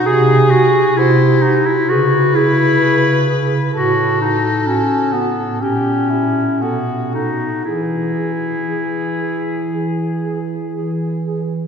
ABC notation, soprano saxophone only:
X:1
M:4/4
L:1/8
Q:1/4=62
K:E
V:1 name="Soprano saxophone"
G2 ^B z =B4 | A4 =G E F2 | G6- G z |]